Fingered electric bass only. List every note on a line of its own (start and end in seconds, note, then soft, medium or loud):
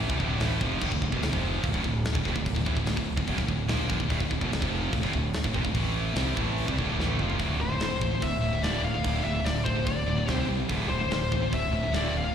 0.09 0.19 C2 medium
0.20 0.39 D1 loud
0.41 0.60 A1 medium
0.61 0.80 F1 medium
0.82 0.91 D1 medium
0.92 1.01 D1 medium
1.02 1.11 D1 medium
1.13 1.20 E1 medium
1.20 1.31 D1 medium
1.33 1.61 F1 medium
1.64 1.73 D1 medium
1.74 1.83 D1 medium
1.84 2.03 D1 medium
2.15 2.24 D1 medium
2.25 2.35 F1 medium
2.36 2.55 D1 medium
2.56 2.66 D1 medium
2.67 2.76 A1 loud
2.77 2.85 D1 medium
2.85 2.96 D1 medium
2.97 3.16 D1 medium
3.17 3.27 D1 medium
3.28 3.37 D1 loud
3.38 3.48 D1 medium
3.48 3.67 D1 medium
3.69 3.88 A#1 medium
3.90 3.99 G1 medium
4.00 4.09 D1 medium
4.10 4.19 D1 medium
4.21 4.30 D1 medium
4.31 4.40 D1 medium
4.41 4.49 E1 loud
4.50 4.60 D1 medium
4.62 4.90 F1 medium
4.93 5.02 D1 medium
5.03 5.13 D1 medium
5.13 5.32 D1 medium
5.44 5.54 D1 medium
5.55 5.64 F1 medium
5.64 5.74 D1 medium
5.74 6.13 A1 medium
6.15 6.35 C2 medium
6.38 6.66 A1 medium
6.68 6.77 C2 medium
6.79 6.97 D1 medium
6.98 7.17 A1 medium
7.20 7.38 F1 medium
7.40 7.53 D1 medium
7.61 7.74 D1 medium
7.81 7.94 D1 medium
8.01 8.15 A1 medium
8.22 8.36 D1 medium
8.42 8.56 D1 medium
8.63 8.77 D1 medium
8.82 8.97 D1 medium
9.04 9.18 D1 medium
9.24 9.38 D1 medium
9.45 9.59 D1 medium
9.67 9.80 D1 medium
9.87 10.01 D1 medium
10.08 10.30 D1 medium
10.28 10.42 C2 medium
10.50 10.63 C2 medium
10.70 10.83 D1 medium
10.91 11.04 D1 medium
11.10 11.24 D1 medium
11.32 11.45 A1 medium
11.53 11.66 D1 medium
11.71 11.85 D1 medium
11.92 12.06 D1 medium
12.14 12.27 D1 medium